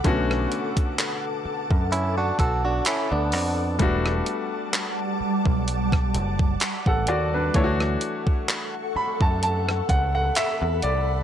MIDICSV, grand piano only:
0, 0, Header, 1, 2, 480
1, 0, Start_track
1, 0, Key_signature, 2, "minor"
1, 0, Tempo, 937500
1, 24, Time_signature, 4, 2, 24, 8
1, 5751, End_track
2, 0, Start_track
2, 0, Title_t, "Grand piano"
2, 0, Program_c, 0, 0
2, 0, Control_c, 0, 64, 127
2, 20, Note_on_c, 0, 50, 80
2, 25, Note_on_c, 0, 57, 73
2, 30, Note_on_c, 0, 59, 77
2, 34, Note_on_c, 0, 61, 77
2, 37, Note_on_c, 0, 66, 90
2, 1922, Note_off_c, 0, 50, 0
2, 1924, Note_off_c, 0, 57, 0
2, 1926, Note_off_c, 0, 59, 0
2, 1928, Note_off_c, 0, 61, 0
2, 1930, Note_off_c, 0, 66, 0
2, 1939, Note_on_c, 0, 55, 77
2, 1942, Note_on_c, 0, 57, 71
2, 1947, Note_on_c, 0, 59, 73
2, 1951, Control_c, 0, 64, 0
2, 1951, Note_on_c, 0, 62, 73
2, 1956, Note_on_c, 0, 66, 87
2, 2056, Control_c, 0, 64, 127
2, 3367, Note_off_c, 0, 62, 0
2, 3369, Note_off_c, 0, 66, 0
2, 3518, Note_on_c, 0, 78, 72
2, 3522, Note_on_c, 0, 69, 56
2, 3621, Note_off_c, 0, 78, 0
2, 3623, Note_off_c, 0, 69, 0
2, 3627, Note_on_c, 0, 74, 74
2, 3630, Note_on_c, 0, 66, 62
2, 3748, Note_off_c, 0, 74, 0
2, 3750, Note_off_c, 0, 66, 0
2, 3758, Note_on_c, 0, 71, 65
2, 3761, Note_on_c, 0, 62, 54
2, 3841, Note_off_c, 0, 55, 0
2, 3843, Note_off_c, 0, 57, 0
2, 3845, Note_off_c, 0, 59, 0
2, 3861, Note_on_c, 0, 52, 75
2, 3865, Note_on_c, 0, 57, 75
2, 3866, Note_off_c, 0, 62, 0
2, 3869, Control_c, 0, 64, 0
2, 3870, Note_on_c, 0, 73, 72
2, 3874, Note_on_c, 0, 62, 71
2, 3877, Note_on_c, 0, 64, 72
2, 3906, Note_off_c, 0, 64, 0
2, 3910, Note_on_c, 0, 66, 89
2, 3972, Control_c, 0, 64, 127
2, 3984, Note_off_c, 0, 71, 0
2, 4590, Note_on_c, 0, 83, 73
2, 4708, Note_off_c, 0, 83, 0
2, 4720, Note_on_c, 0, 81, 72
2, 4820, Note_off_c, 0, 81, 0
2, 4829, Note_on_c, 0, 81, 74
2, 5050, Note_off_c, 0, 81, 0
2, 5067, Note_on_c, 0, 78, 73
2, 5186, Note_off_c, 0, 78, 0
2, 5196, Note_on_c, 0, 78, 78
2, 5297, Note_off_c, 0, 78, 0
2, 5307, Note_on_c, 0, 76, 83
2, 5529, Note_off_c, 0, 76, 0
2, 5547, Note_on_c, 0, 74, 76
2, 5751, Note_off_c, 0, 52, 0
2, 5751, Note_off_c, 0, 57, 0
2, 5751, Note_off_c, 0, 62, 0
2, 5751, Note_off_c, 0, 66, 0
2, 5751, Note_off_c, 0, 73, 0
2, 5751, Note_off_c, 0, 74, 0
2, 5751, End_track
0, 0, End_of_file